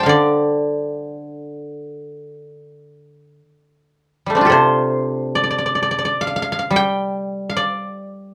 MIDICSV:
0, 0, Header, 1, 2, 480
1, 0, Start_track
1, 0, Tempo, 1081081
1, 31, Time_signature, 4, 2, 24, 8
1, 511, Tempo, 1117318
1, 2431, Tempo, 1094891
1, 3624, End_track
2, 0, Start_track
2, 0, Title_t, "Guzheng"
2, 0, Program_c, 0, 107
2, 0, Note_on_c, 0, 55, 50
2, 0, Note_on_c, 0, 72, 62
2, 0, Note_on_c, 0, 79, 37
2, 0, Note_on_c, 0, 81, 32
2, 0, Note_on_c, 0, 84, 32
2, 0, Note_on_c, 0, 86, 29
2, 14, Note_on_c, 0, 77, 38
2, 27, Note_on_c, 0, 50, 47
2, 41, Note_on_c, 0, 74, 62
2, 492, Note_off_c, 0, 86, 0
2, 508, Note_off_c, 0, 55, 0
2, 548, Note_off_c, 0, 84, 0
2, 625, Note_off_c, 0, 81, 0
2, 664, Note_off_c, 0, 72, 0
2, 683, Note_off_c, 0, 79, 0
2, 747, Note_off_c, 0, 77, 0
2, 849, Note_off_c, 0, 74, 0
2, 1473, Note_off_c, 0, 50, 0
2, 1848, Note_on_c, 0, 55, 25
2, 1863, Note_on_c, 0, 57, 27
2, 1885, Note_on_c, 0, 60, 28
2, 1892, Note_on_c, 0, 62, 32
2, 1911, Note_on_c, 0, 65, 34
2, 1928, Note_on_c, 0, 67, 36
2, 1934, Note_on_c, 0, 69, 39
2, 1937, Note_off_c, 0, 55, 0
2, 1948, Note_on_c, 0, 48, 43
2, 1958, Note_on_c, 0, 72, 57
2, 2316, Note_on_c, 0, 74, 61
2, 2350, Note_off_c, 0, 74, 0
2, 2352, Note_on_c, 0, 74, 42
2, 2380, Note_off_c, 0, 74, 0
2, 2382, Note_on_c, 0, 74, 42
2, 2414, Note_off_c, 0, 74, 0
2, 2416, Note_on_c, 0, 74, 36
2, 2446, Note_off_c, 0, 74, 0
2, 2448, Note_on_c, 0, 74, 41
2, 2487, Note_off_c, 0, 74, 0
2, 2489, Note_on_c, 0, 74, 35
2, 2519, Note_off_c, 0, 74, 0
2, 2521, Note_on_c, 0, 74, 41
2, 2556, Note_off_c, 0, 74, 0
2, 2558, Note_on_c, 0, 74, 35
2, 2589, Note_off_c, 0, 74, 0
2, 2591, Note_on_c, 0, 74, 42
2, 2618, Note_off_c, 0, 74, 0
2, 2619, Note_on_c, 0, 74, 41
2, 2690, Note_on_c, 0, 77, 58
2, 2714, Note_off_c, 0, 77, 0
2, 2716, Note_on_c, 0, 77, 45
2, 2754, Note_off_c, 0, 77, 0
2, 2755, Note_on_c, 0, 77, 51
2, 2781, Note_off_c, 0, 77, 0
2, 2782, Note_on_c, 0, 77, 47
2, 2817, Note_off_c, 0, 72, 0
2, 2824, Note_off_c, 0, 77, 0
2, 2826, Note_on_c, 0, 77, 54
2, 2854, Note_off_c, 0, 77, 0
2, 2855, Note_on_c, 0, 77, 45
2, 2886, Note_off_c, 0, 69, 0
2, 2907, Note_on_c, 0, 55, 42
2, 2931, Note_on_c, 0, 79, 74
2, 2951, Note_off_c, 0, 67, 0
2, 3008, Note_off_c, 0, 65, 0
2, 3108, Note_off_c, 0, 62, 0
2, 3191, Note_off_c, 0, 60, 0
2, 3251, Note_off_c, 0, 77, 0
2, 3253, Note_on_c, 0, 77, 43
2, 3282, Note_off_c, 0, 74, 0
2, 3284, Note_on_c, 0, 74, 57
2, 3310, Note_off_c, 0, 57, 0
2, 3392, Note_off_c, 0, 48, 0
2, 3612, Note_off_c, 0, 79, 0
2, 3624, Note_off_c, 0, 55, 0
2, 3624, Note_off_c, 0, 74, 0
2, 3624, Note_off_c, 0, 77, 0
2, 3624, End_track
0, 0, End_of_file